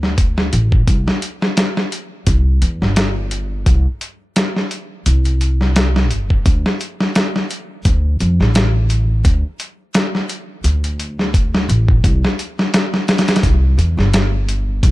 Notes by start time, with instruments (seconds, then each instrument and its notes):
Already playing: upright bass D2
0.03 snare
0.18 kick, closed hi-hat
0.38 snare
0.53 upright bass A1, closed hi-hat
0.72 kick
0.87 upright bass C2, kick, closed hi-hat
1.08 snare
1.22 closed hi-hat
1.42 snare
1.57 snare, closed hi-hat
1.77 snare
1.92 closed hi-hat
2.27 upright bass C2, kick, closed hi-hat
2.62 upright bass E2, closed hi-hat
2.82 upright bass G1, snare
2.96 snare, closed hi-hat
3.31 closed hi-hat
3.66 upright bass C2, kick, closed hi-hat
4.01 closed hi-hat
4.36 snare, closed hi-hat
4.56 snare
4.71 closed hi-hat
5.06 upright bass C2, closed hi-hat
5.25 closed hi-hat
5.41 closed hi-hat
5.61 snare
5.76 snare, closed hi-hat
5.96 snare
6.11 upright bass G1, closed hi-hat
6.30 kick
6.46 upright bass D2, kick, closed hi-hat
6.66 snare
6.81 closed hi-hat
7.00 snare
7.15 snare, closed hi-hat
7.36 snare
7.51 closed hi-hat
7.85 upright bass D2, kick, closed hi-hat
8.20 upright bass F2, closed hi-hat
8.40 upright bass A1, snare
8.55 snare, closed hi-hat
8.90 closed hi-hat
9.25 upright bass D2, kick, closed hi-hat
9.60 closed hi-hat
9.94 snare, closed hi-hat
10.15 snare
10.29 closed hi-hat
10.64 upright bass D2, closed hi-hat
10.84 closed hi-hat
11.00 closed hi-hat
11.19 snare
11.34 kick, closed hi-hat
11.55 snare
11.69 upright bass A1, closed hi-hat
11.88 kick
12.04 upright bass C2, kick, closed hi-hat
12.25 snare
12.39 closed hi-hat
12.59 snare
12.74 snare, closed hi-hat
12.94 snare
13.08 snare, closed hi-hat
13.18 snare, closed hi-hat
13.28 snare, closed hi-hat
13.36 snare, closed hi-hat
13.43 upright bass C2, kick, closed hi-hat
13.78 upright bass E2, closed hi-hat
13.97 upright bass G1, snare
14.14 snare, closed hi-hat
14.49 closed hi-hat
14.83 upright bass C2, kick, closed hi-hat